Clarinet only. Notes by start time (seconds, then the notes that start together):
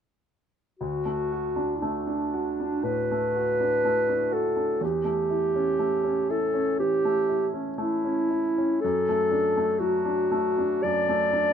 0.79 F#4
1.82 D4
2.84 B4
4.33 A4
4.84 G4
6.30 A4
6.79 G4
7.78 E4
8.81 A4
9.79 F#4
10.83 D5